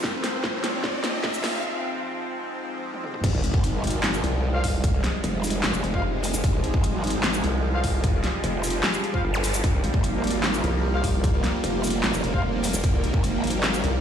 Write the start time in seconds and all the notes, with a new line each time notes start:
Already playing: G#2 F3 C4, riser
0.04 kick, snare
0.24 snare, closed hi-hat
0.44 kick, snare
0.64 snare, closed hi-hat
0.84 kick, snare
1.04 snare, closed hi-hat
1.24 kick, snare
1.34 shaker
1.44 snare, open hi-hat
2.94 high tom
3.04 mid tom
3.14 mid tom
3.24 F1 F3 G3 G#3, kick, closed hi-hat, crash, impact
3.34 C2
3.44 G#1, closed hi-hat
3.54 kick
3.64 closed hi-hat
3.84 closed hi-hat
3.87 closed hi-hat
3.90 closed hi-hat
4.04 snare, clap, closed hi-hat
4.14 shaker
4.24 C2, closed hi-hat
4.54 F4 C5 F5
4.64 kick, open hi-hat
4.84 kick, closed hi-hat
5.04 snare, closed hi-hat
5.24 F1, closed hi-hat
5.44 closed hi-hat, shaker
5.47 closed hi-hat
5.50 closed hi-hat
5.64 G#1, snare, clap, closed hi-hat
5.74 F1, shaker
5.84 F1, closed hi-hat
5.94 F4 C5 F5, kick
6.14 F1
6.24 open hi-hat, shaker
6.34 F1, shaker
6.44 F1, kick, closed hi-hat
6.54 C2
6.64 G#1, closed hi-hat
6.74 kick
6.84 closed hi-hat
7.04 closed hi-hat
7.07 closed hi-hat
7.10 closed hi-hat
7.24 snare, clap, closed hi-hat
7.34 shaker
7.44 C2, closed hi-hat
7.74 F4 C5 F5
7.84 kick, open hi-hat
8.04 kick, closed hi-hat
8.24 snare, closed hi-hat
8.44 F1, closed hi-hat
8.64 closed hi-hat, shaker
8.67 closed hi-hat
8.70 closed hi-hat
8.84 snare, clap, closed hi-hat
8.94 shaker
9.04 closed hi-hat
9.14 F4 C5 F5, kick
9.24 G1
9.34 zap
9.44 open hi-hat, shaker
9.54 shaker
9.64 F1 A#3, kick, closed hi-hat
9.74 C2
9.84 G#1, closed hi-hat
9.94 kick
10.04 closed hi-hat
10.24 closed hi-hat
10.27 closed hi-hat
10.30 closed hi-hat
10.44 snare, clap, closed hi-hat
10.54 shaker
10.64 C2, closed hi-hat
10.94 F4 C5 F5
11.04 kick, open hi-hat
11.24 kick, closed hi-hat
11.44 snare, closed hi-hat
11.64 F1, closed hi-hat
11.84 closed hi-hat, shaker
11.87 closed hi-hat
11.90 closed hi-hat
12.04 G#1, snare, clap, closed hi-hat
12.14 F1, shaker
12.24 F1, closed hi-hat
12.34 F4 C5 F5, kick
12.54 F1
12.64 open hi-hat, shaker
12.74 F1, shaker
12.84 F1, kick, closed hi-hat
12.94 C2
13.04 G#1, closed hi-hat
13.14 kick
13.24 closed hi-hat
13.44 closed hi-hat
13.47 closed hi-hat
13.50 closed hi-hat
13.64 snare, clap, closed hi-hat
13.74 shaker
13.84 C2, closed hi-hat